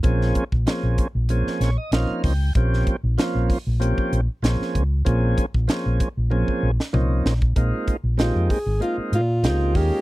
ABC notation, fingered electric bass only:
X:1
M:4/4
L:1/16
Q:"Swing 16ths" 1/4=96
K:Bbdor
V:1 name="Fingered electric bass" clef=bass
B,,,2 z B,,, z B,,, z B,,,2 z B,,, z B,,, z D,,2 | B,,,2 z B,,, z B,,, z B,,,2 z B,,, z B,,, z D,,2 | B,,,2 z B,,, z B,,, z B,,,2 z B,,, z C,,2 B,,,2 | B,,, z2 B,,,2 F,, z A,,, z2 B,,2 D,,2 E,, z |]